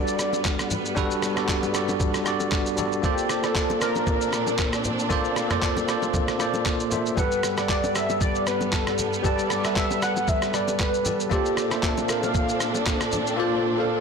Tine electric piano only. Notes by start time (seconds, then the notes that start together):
Already playing: G3 D4 F#4 A4 B4 D5 F#5
0.95 G3 D4 F#4 A4 B4
1.35 G3 D4 F#4 A4 D5
1.73 G3 D4 F#4 A4 D5
2.24 G3 D4 F#4 A4 D5
2.76 G3 D4 F#4 A4 D5
3.02 A#3 F4 A4 C5 D5
3.42 A#3 F4 A4 C5 D5
3.80 A#3 F4 C5 D5 A5
5.09 A#3 F4 A4 C5 D5
5.49 A#3 F4 A4 C5 D5
5.87 A#3 F4 A4 C5 D5
6.38 A#3 F4 A4 C5 D5
6.90 A#3 F4 A4 C5 E5
7.16 G3 G4 A4 B4 F#5
7.56 G3 G4 A4 B4 F#5
7.93 G3 G4 A4 B4 A5
9.23 G3 G4 A4 B4 A5
9.63 G3 G4 A4 B4 D5
10.00 G3 G4 A4 B4 F#5
10.52 G3 G4 A4 B4 D5
11.04 G3 G4 A4 B4 A5
11.29 A#3 F4 A4 C5 D5
11.70 A#3 F4 A4 C5 E5
12.07 A#3 F4 A4 C5 F5
13.36 A#3 F4 A4 C5 D5
13.77 A#3 F4 A4 C5 F5